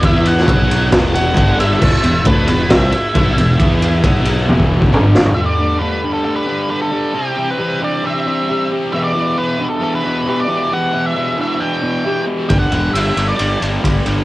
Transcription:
<<
  \new Staff \with { instrumentName = "Lead electric guitar" } { \time 4/4 \key e \minor \tempo 4 = 135 e''8 fis''4. r8 fis''4 e''8~ | e''4 b'8 b'8 e''2~ | e''2. r4 | e''16 d''8. b'8. a'16 a'16 b'8. b'16 a'8. |
g'8. b'8. d''8 e''4. r8 | e''16 d''8. b'8. a'16 a'16 b'8. b'16 d''8. | fis''8. e''8. e''8 g''4. r8 | g''16 fis''8. e''8. d''16 d''8 r4. | }
  \new Staff \with { instrumentName = "Steel-string acoustic guitar" } { \time 4/4 \key e \minor r1 | r1 | r1 | g8 a8 a8 g'8 a8 d'8 b'8 d'8 |
c8 e8 e8 d'8 e8 c'8 g'8 c'8 | e8 b8 e8 d'8 e8 b8 g'8 b8 | e8 b8 e8 d'8 e8 b8 g'8 b8 | r1 | }
  \new Staff \with { instrumentName = "Overdriven electric guitar" } { \clef bass \time 4/4 \key e \minor <e b e'>4 <b, fis b>4 <e, b, e>4 <g, d g>4 | <e, b, e>8 <e, b,>8 <d a d'>8 <e, b,>8 <c g c'>8 r8 <b, fis b>8 <e, b,>8 | <e b e'>4 <b, fis b>4 <e, b, e>4 <g, d g>4 | <g, d g>8 <g, d g>8 <g, d g>8 <g, d g>8 <g, d g>8 <g, d g>8 <g, d g>8 <g, d g>8 |
<c g c'>8 <c g c'>8 <c g c'>8 <c g c'>8 <c g c'>8 <c g c'>8 <c g c'>8 <c g c'>8 | <e, b, e>8 <e, b, e>8 <e, b, e>8 <e, b, e>8 <e, b, e>8 <e, b, e>8 <e, b, e>8 <e, b, e>8 | <e, b, e>8 <e, b, e>8 <e, b, e>8 <e, b, e>8 <e, b, e>8 <e, b, e>8 <e, b, e>8 <e, b, e>8 | <g, d g>8 <g, d g>8 <g, d g>8 <g, d g>8 <g, d g>8 <g, d g>8 <g, d g>8 <g, d g>8 | }
  \new Staff \with { instrumentName = "Fingered electric bass" } { \clef bass \time 4/4 \key e \minor e,4 b,,4 e,,4 g,,4 | e,,8 e,,8 d,8 e,,8 c,8 r8 b,,8 e,,8 | e,4 b,,4 e,,4 g,,4 | r1 |
r1 | r1 | r1 | g,,8 e,,8 g,,8 g,,8 g,,8 g,,8 g,,8 g,,8 | }
  \new DrumStaff \with { instrumentName = "Drums" } \drummode { \time 4/4 <bd cymr>8 cymr16 sn16 <bd cymr>8 cymr8 <bd cymr sn>8 cymr8 <bd cymr>8 cymr8 | <cymc bd>8 cymr8 <bd cymr>8 cymr8 <bd cymr sn>8 cymr8 <bd cymr>8 cymr8 | <bd cymr>8 cymr8 <bd cymr>8 cymr8 tommh16 bd8 bd16 toml8 sn16 tomfh16 | r4 r4 r4 r4 |
r4 r4 r4 r4 | r4 r4 r4 r4 | r4 r4 r4 r4 | <bd cymr>8 cymr8 cymr8 cymr8 cymr8 cymr8 <bd cymr>8 cymr8 | }
>>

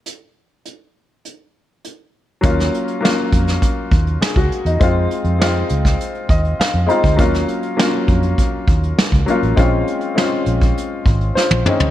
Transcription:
<<
  \new Staff \with { instrumentName = "Grand piano" } { \time 4/4 \key ees \dorian \tempo 4 = 101 << { r1 | r2. aes'16 ges'8 ees'16~ | ees'16 r2 r16 ees''8 f''8 bes''8 | r1 |
r2. <f' c''>4 | } \\ { r1 | <ges bes des' f'>8 r8 <ges bes des' f'>4. r4. | <aes c' ees' f'>8 r8 <aes c' ees' f'>4. r4 <aes c' ees' f'>8 | <ges bes des' f'>8 r8 <ges bes des' f'>4. r4 <ges bes des' f'>8 |
<aes c' des' f'>8 r8 <aes c' des' f'>4. r4 <aes c' des' ees'>8 | } >> }
  \new Staff \with { instrumentName = "Fingered electric bass" } { \clef bass \time 4/4 \key ees \dorian r1 | ees,8 r4 f,8 r8 ees,8 r16 des,16 r16 fes,16 | f,8 r16 f,8. des,8 r8 ees,8 r16 f,16 r16 d,16 | ees,8 r4 f,8 r8 ees,8 r16 des,16 r16 a,,16 |
bes,,8 r4 bes,,8 r8 aes,,8 r16 bes,,16 r16 d,16 | }
  \new DrumStaff \with { instrumentName = "Drums" } \drummode { \time 4/4 hh4 hh4 hh4 hh4 | <hh bd>16 <hh sn>16 hh16 hh16 sn16 hh16 <hh bd>16 <hh sn>16 <hh bd>8 <hh bd>16 hh16 sn16 bd16 hh16 hh16 | <hh bd>8 hh16 hh16 sn8 hh16 <hh bd sn>16 hh16 hh16 <hh bd>16 hh16 sn16 hh16 hh16 <hh bd>16 | <hh bd>16 <hh sn>16 hh16 hh16 sn16 hh16 <hh bd>16 hh16 <hh bd>8 <hh bd>16 hh16 sn16 bd16 hh16 hh16 |
<hh bd>8 hh16 hh16 sn8 hh16 <hh bd>16 hh8 <hh bd>16 hh16 sn16 tommh16 toml16 tomfh16 | }
>>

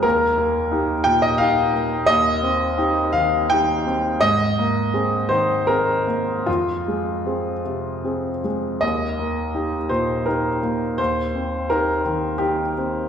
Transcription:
\new Staff \with { instrumentName = "Grand piano" } { \time 3/4 \key ees \major \tempo 4 = 83 << { bes'4. g''16 ees''16 f''4 | ees''4. f''8 g''4 | ees''4. c''8 bes'4 | f'2~ f'8 r8 |
ees''4. c''8 bes'4 | c''4 bes'4 g'4 | } \\ { ees,8 bes8 <ees' g'>8 bes,8 <ees' g'>8 bes8 | ees,8 c'8 <ees' g'>8 ees8 <ees' g'>8 c'8 | aes,8 bes8 <c' aes'>8 ees8 <c' aes'>8 bes8 | f,8 aes8 <c' aes'>8 c8 <c' aes'>8 aes8 |
ees,8 bes8 <ees' g'>8 bes,8 <ees' g'>8 bes8 | ees,8 c'8 <ees' g'>8 ees8 ees'8 c'8 | } >> }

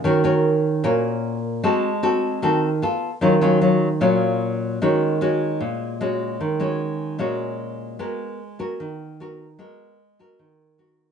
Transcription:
\new Staff \with { instrumentName = "Nylon-string guitar" } { \time 4/4 \key ees \minor \tempo 4 = 151 << { <des' ges' bes'>8 <des' ges' bes'>4. <des' ges' bes'>4. r8 | <c' ges' a'>8 r8 <c' ges' a'>4 <c' ges' a'>8 r8 <ces' f' a'>8 r8 | <ges des' f'>8 <ges des' f'>8 <ges des' f'>8 r8 <ges des' f'>2 | <aes des' ges'>4 <aes des' ges'>2 <aes des' ges'>4~ |
<aes des' ges'>8 <aes des' ges'>4. <aes des' ges'>2 | <ces' ges' bes'>4 r8 <ces' ges' bes'>4. <ces' ges' bes'>8 r8 | <ces' ges' bes'>4 r8 <ces' ges' bes'>4. <ces' ges' bes'>4 | } \\ { ees2 bes,2 | aes2 ees4 r4 | ees2 bes,2 | ees2 bes,2 |
ees2 bes,2 | aes2 ees2 | aes2 ees2 | } >> }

